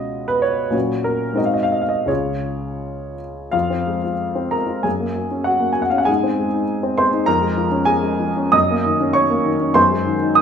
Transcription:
upright piano
Already playing: B2 G#3 C#4 F4 D#5
0.28 B4
0.42 C#5
0.70 A#2 F#3 C#4 F#4
1.04 A#4
1.33 G#2 G#3 C4 F#4
1.37 D#5
1.45 F5
1.54 D#5
1.63 F5
1.72 D#5
1.82 F5
1.89 D#5
2.06 C#2 G#3 C#4 F4 G#4 C#5
3.52 F2 F4 F5
3.70 C4
3.87 G#3
4.03 F4
4.35 C4
4.51 G#3 A#4 A#5
4.67 F4
4.83 F#2 G#4 G#5
5.00 A#3
5.15 F#3
5.31 C#4
5.44 F#4 F#5
5.60 A#3
5.73 F#3 G#5
5.82 F#5
5.90 C#4 F5
5.98 F#5
6.05 G#2 G#4 G#5
6.23 C4
6.38 G#3
6.53 D#4
6.83 C4
6.98 G#3 C5 C6
7.13 D#4
7.26 F2 A#4 A#5
7.41 G#3
7.57 F3
7.72 C#4
7.85 G#4 G#5
8.02 G#3
8.20 F3
8.37 C#4
8.52 F#2 D#5 D#6
8.71 A#3
8.85 D#3
9.01 C#4
9.13 C#5 C#6
9.30 A#3
9.44 D#3
9.61 C#4
9.74 F#2 C5 C6
9.91 G#3
10.05 D#3
10.22 D#4
10.35 D#6

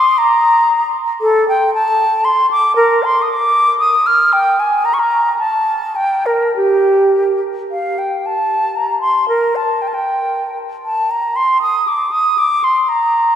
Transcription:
flute
Already playing: C6
0.18 A#5
1.21 A4
1.49 G5
1.74 A5
2.25 C6
2.51 D6
2.76 A#4
3.04 C6
3.22 D#6
3.30 D6
3.79 D#6
4.06 F6
4.33 G5
4.60 G#5
4.85 A#5
4.94 C#6
4.99 A#5
5.39 A5
5.96 G5
6.26 A#4
6.56 G4
7.72 F5
7.98 G5
8.26 A5
8.76 A#5
9.01 C6
9.29 A#4
9.56 A5
9.82 G5
9.88 A5
9.94 G5
10.85 A5
11.11 A#5
11.36 C6
11.62 D#6
11.88 D6
12.11 D#6
12.38 D6
12.64 C6
12.89 A#5

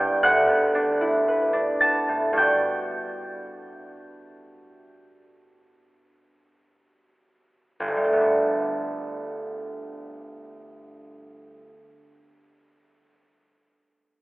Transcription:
harp
Already playing: C2 G3 B3 D4 E4 B4 D5 E5 G5 B5 D6 E6 G6
0.00 G2
0.23 D2 F#5 F#6
0.49 B3
0.75 D4
1.01 E4
1.28 B4
1.53 D4
1.80 B3 A5 A6
2.09 A2
2.33 G2 B3 D4 F#4
2.37 G5 G6
7.80 G1
7.88 D2
7.97 G3
8.04 A3
8.13 B3
8.21 D4

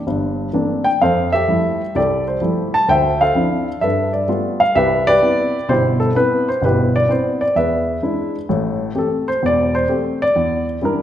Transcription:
grand piano
0.07 G1 G2
0.53 E3 A3 A#3 C4 D4
0.84 G5
1.01 F2 A4 C5 F5
1.32 G4 A4 E5
1.48 F3 G3 A3 E4
1.95 C2 G4 A4 D5
2.28 C5
2.41 F3 G3 A3 E4
2.74 A5
2.88 D2 C5 E5 G5
3.21 A4 C5 F5
3.35 F3 C4 D4 E4
3.81 G2 A4 B4 E5
4.13 D5
4.28 G3 A3 B3 F4
4.60 F5
4.75 C2 G4 B4 E5
5.07 G4 B4 D5
5.22 B3 C4 E4
5.69 G1 B2 E4 G4 C5
6.00 A4
6.15 B3 C4 E4 B4
6.49 C5
6.62 G1 B2 E4 G4 B4
6.96 D5
7.09 B3 C4 E4 C5
7.41 D5
7.56 E2 G#4 B4 E5
8.03 G#3 D4 E4
8.49 A1 A2
8.95 A3 C4 G4 A4
9.28 C5
9.43 E1 E2 D5
9.75 C5
9.89 A3 C4 G4
10.22 D5
10.36 E2
10.82 G3 D4 E4 A#4

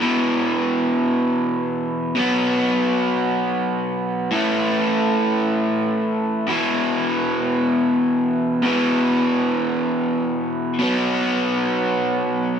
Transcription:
overdriven electric guitar
0.00 E2 B2 E3
2.15 B2 F#3 B3
4.31 A2 E3
4.35 A3
6.47 E2 B2 E3
8.63 E2 B2
8.67 E3
10.79 B2 F#3
10.83 B3

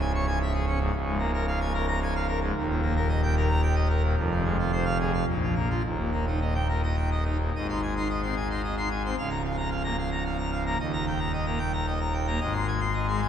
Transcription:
pipe organ
Already playing: C#1 C#2
0.01 G#5
0.15 C#5
0.27 G#5
0.42 E5
0.54 G#4
0.67 C#4
0.81 G#2
0.94 C#1 C#2
1.05 G#2
1.19 A#3
1.34 A#4
1.47 F5
1.61 G#5
1.74 A#4
1.88 A#5
2.03 G#5
2.16 F5
2.28 A#4
2.42 G#2
2.56 D#1 D#2
2.69 A#2
2.83 A#3
2.97 A#4
3.09 D#5
3.23 G5
3.37 A#4
3.49 A#5
3.62 G5
3.75 D#5
3.90 A#4
4.03 A#2
4.17 F1 F2
4.32 C3
4.45 G#3
4.59 F4
4.72 C5
4.85 F5
5.00 G#4
5.14 F5
5.27 A#1 A#2
5.42 F3
5.56 A#3
5.70 F4
5.84 D#1 D#2
5.98 A#2
6.13 A#3
6.27 D#4
6.41 D#5
6.55 G5
6.69 A#4
6.83 D#5
6.96 G5
7.11 D#5
7.25 D#4
7.41 A#2
7.56 G#1 G#2 D#5
7.69 D#4 C6
7.83 G#5
7.96 D#4 C6
8.10 D#5
8.23 C4 C6
8.37 G#5
8.50 D#4 C6
8.64 D#5
8.78 D#4 C6
8.91 G#5
9.05 C4 C6
9.18 C#1 C#2 F5
9.30 A#5
9.45 F5
9.57 A#5
9.70 F5
9.84 A#3 A#5
9.98 F5
10.11 A#5
10.25 F5
10.38 A#5
10.52 F5
10.66 A#3 A#5
10.80 D#1 D#2 D#5
10.93 A#5
11.07 G5
11.19 A#5
11.33 D#5
11.46 A#3 A#5
11.59 G5
11.73 A#5
11.86 D#5
12.00 A#5
12.14 G5
12.27 A#3 A#5
12.40 G#1 G#2 D#5
12.54 C6
12.68 G#5
12.81 C6
12.94 D#5
13.08 G#3 C6
13.22 G#5

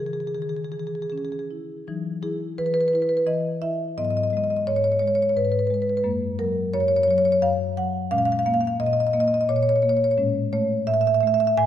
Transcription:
marimba
Already playing: C#3 E3
0.00 G#4
0.06 G#4
0.13 G#4
0.20 G#4
0.27 G#4
0.35 D#3 G#4
0.42 G#4
0.49 G#4
0.57 G#4
0.65 G#4
0.72 E3 G#4
0.79 G#4
0.87 G#4
0.95 G#4
1.02 G#4
1.10 C#4 G#4
1.18 G#4
1.25 G#4
1.32 G#4
1.39 G#4
1.51 E4
1.87 E3 F#3 D#4
2.23 E4 G#4
2.58 E3 B4
2.66 B4
2.74 B4
2.81 B4
2.88 B4
2.93 E4 B4
3.02 B4
3.09 B4
3.17 B4
3.27 E3 D#5
3.62 E4 E5
3.97 G#2 F#3 B3 D#5
4.05 D#5
4.10 D#5
4.17 D#5
4.23 D#5
4.30 G#3 D#5
4.37 D#5
4.44 D#5
4.50 D#5
4.57 D#5
4.67 G#2 C#5
4.76 C#5
4.84 C#5
4.92 C#5
4.99 G#3 C#5
5.08 C#5
5.15 C#5
5.22 C#5
5.29 C#5
5.37 G#2 B4
5.45 B4
5.52 B4
5.59 B4
5.67 G#3 B4
5.74 B4
5.82 B4
5.89 B4
5.97 B4
6.04 F#2 G#3 A#3
6.39 F#3 A#4
6.74 F#2 C#5
6.80 C#5
6.88 C#5
6.97 C#5
7.03 C#5
7.08 F#3 C#5
7.18 C#5
7.25 C#5
7.32 C#5
7.42 F#2 F5
7.77 F#3 F#5
8.11 A#2 G#3 C#4 F5
8.18 F5
8.25 F5
8.32 F5
8.39 F5
8.46 A#3 F5
8.54 F5
8.61 F5
8.67 F5
8.80 A#2 D#5
8.86 D#5
8.93 D#5
9.00 D#5
9.07 D#5
9.13 A#3 D#5
9.20 D#5
9.28 D#5
9.34 D#5
9.41 D#5
9.49 A#2 C#5
9.56 C#5
9.63 C#5
9.69 C#5
9.76 C#5
9.82 A#3 C#5
9.89 C#5
9.97 C#5
10.04 C#5
10.11 C#5
10.18 A2 G#3 C#4
10.53 A3 C#5
10.87 A2 E5
10.94 E5
11.01 E5
11.07 E5
11.14 E5
11.20 A3 E5
11.27 E5
11.34 E5
11.40 E5
11.47 E5
11.57 A2 G#5

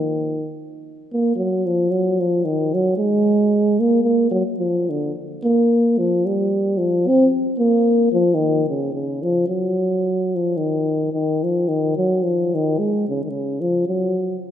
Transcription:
euphonium
Already playing: D#3
1.13 A#3
1.36 F#3
1.66 F3
1.91 F#3
2.20 F3
2.45 D#3
2.74 F#3
2.98 G#3
3.80 A#3
4.04 A#3
4.31 F#3
4.59 F3
4.90 D3
5.43 A#3
5.98 F3
6.26 G3
6.78 F3
7.08 C4
7.59 A#3
8.13 F3
8.35 D#3
8.69 C#3
8.93 C#3
9.23 F3
9.49 F#3
10.36 F3
10.57 D#3
11.13 D#3
11.44 F3
11.69 D#3
11.97 F#3
12.23 F3
12.55 D#3
12.79 G#3
13.09 C#3
13.25 D#3
13.30 C#3
13.61 F3
13.88 F#3

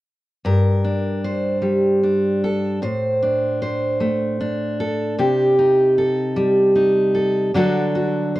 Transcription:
steel-string acoustic guitar
0.45 G2 A#4
0.84 D4
1.24 C5
1.62 G3
2.03 D4
2.44 A4
2.82 A2 C5
3.22 D4
3.62 C5
4.00 A3
4.41 D4
4.80 A4
5.19 C3 G4
5.59 D#4
5.98 A4
6.36 G3
6.76 D#4
7.15 A4
7.54 D3 F#3 D4 F#4 A4
7.95 F#4
8.36 C5

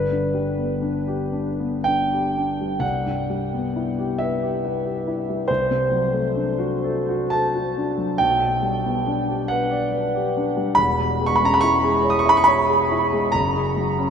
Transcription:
grand piano
Already playing: G1 G2 B4
0.11 D3
0.34 G3
0.58 B3
0.82 D4
1.07 G4
1.33 D4
1.59 B3
1.84 D4 G5
2.12 G4
2.38 D4
2.61 G3
2.79 C2 F#5
3.06 G2
3.30 G3
3.53 B3
3.76 E4
3.98 G4
4.18 B4 E5
4.43 G4
4.65 B4
4.85 G4
5.07 E4
5.30 G3
5.48 C2 C5
5.71 C3
5.91 F#3
6.12 A3
6.36 D4
6.58 F#4
6.84 A4
7.09 F#4
7.30 A4 A5
7.55 F#4
7.77 D4
7.98 F#3
8.18 B1 G5
8.42 B2
8.62 G3
8.85 B3
9.06 D4
9.28 G4
9.48 B4 F#5
9.71 D5
9.92 B4
10.15 G4
10.37 D4
10.57 G3
10.75 E1 E2 B5
10.99 B2
11.21 G#3
11.26 C#6
11.36 B5
11.41 C#4 A#5
11.54 B5
11.61 E4 C#6
11.84 G#4
12.03 C#5
12.10 D#6
12.19 C#6
12.26 E5 B5
12.37 C#6
12.44 C#5 B5
12.69 G#4
12.92 E4
13.13 G#3
13.32 F#1 F#2 A#5
13.56 C#3
13.77 F#3
13.98 C#4

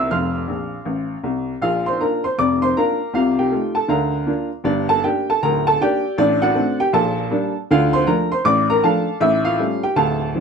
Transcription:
upright piano
Already playing: C2 C3 A#3 C4 E4 C5 E5 C6 E6
0.11 F1 F2 F5 C6 F6
0.48 A#1
0.85 A1
1.24 C2
1.62 A#1 A#2 F4 F5
1.86 C5 C6
2.00 A#3 D4 F4 A#4 A#5
2.24 C5 C6
2.38 F1 F2 D5 D6
2.62 C5 C6
2.77 A#3 D4 F4 A#4 F5 A#5
3.14 C2 C3 F4 F5
3.39 G4 G5
3.52 A3 D#4 F4
3.75 A4 A5
3.88 D2 D3 A#4 F5 A#5
4.26 A#3 D4 F4
4.64 G1 G2 D4 D5
4.89 A4 A5
5.03 A#3 D4 G4 G5
5.30 A4 A5
5.42 D1 D2 A#4 A#5
5.67 A4 A5
5.81 A#3 D4 G4 D5 G5
6.18 A1 A2 D4 D5
6.42 F#4 D5 F#5
6.55 A3 C4 D4
6.80 G4 G5
6.93 A#1 A#2 A4 A5
7.31 G3 A#3 D4
7.71 D2 D3 F4 F5
7.93 C5 C6
8.07 F3 A3 D4 A#4 A#5
8.32 C5 C6
8.44 A1 A2 D5 D6
8.70 A#4 A#5
8.84 F3 A3 D4 A4 F5 A5
9.20 A1 A2 E4 E5
9.45 F4 F5
9.59 G3 A3 C#4
9.83 G4 G5
9.96 D1 D2 A4 F5 A5
10.35 F3 C4 D4

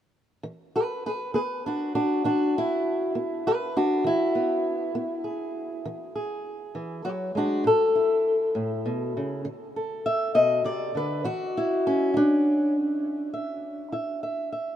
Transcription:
steel-string acoustic guitar
0.43 E3
0.76 G#4 B4
1.06 G#4 B4
1.34 B3 G#4 B4
1.66 D4 F#4
1.95 D4 F#4
2.24 E3 D4 F#4
2.58 E4
3.15 B3
3.47 G#4 B4
3.77 D4 F#4
4.04 E3 E4
4.35 B3
4.95 B3
5.24 G#4
5.86 E3
6.16 G#4
6.75 E3
7.05 F#3 G#4 B4
7.35 G#3 D4 F#4
7.64 A2 A4
7.95 E4
8.55 A2
8.86 B2
9.17 C#3
9.45 D3
9.76 A4
10.06 E5
10.35 B2 D#5
10.64 C3 D5
10.95 D3 B4
11.24 E3 F#4
11.57 E4
11.87 C#4
12.14 D4 E4
13.34 E5
13.92 E4 E5
14.23 E5
14.52 E5

